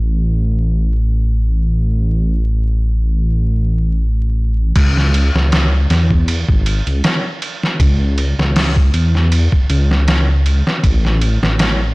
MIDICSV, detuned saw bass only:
0, 0, Header, 1, 2, 480
1, 0, Start_track
1, 0, Tempo, 759494
1, 1088, Time_signature, 4, 2, 24, 8
1, 7547, End_track
2, 0, Start_track
2, 0, Title_t, "Detuned saw bass"
2, 0, Program_c, 0, 39
2, 0, Note_on_c, 0, 33, 80
2, 2986, Note_off_c, 0, 33, 0
2, 3008, Note_on_c, 0, 37, 99
2, 3354, Note_off_c, 0, 37, 0
2, 3380, Note_on_c, 0, 37, 87
2, 3708, Note_off_c, 0, 37, 0
2, 3728, Note_on_c, 0, 40, 96
2, 4074, Note_off_c, 0, 40, 0
2, 4101, Note_on_c, 0, 32, 85
2, 4309, Note_off_c, 0, 32, 0
2, 4339, Note_on_c, 0, 37, 94
2, 4435, Note_off_c, 0, 37, 0
2, 4928, Note_on_c, 0, 37, 102
2, 5274, Note_off_c, 0, 37, 0
2, 5300, Note_on_c, 0, 37, 91
2, 5628, Note_off_c, 0, 37, 0
2, 5647, Note_on_c, 0, 40, 101
2, 5994, Note_off_c, 0, 40, 0
2, 6128, Note_on_c, 0, 37, 105
2, 6714, Note_off_c, 0, 37, 0
2, 6849, Note_on_c, 0, 33, 98
2, 7195, Note_off_c, 0, 33, 0
2, 7220, Note_on_c, 0, 33, 88
2, 7547, Note_off_c, 0, 33, 0
2, 7547, End_track
0, 0, End_of_file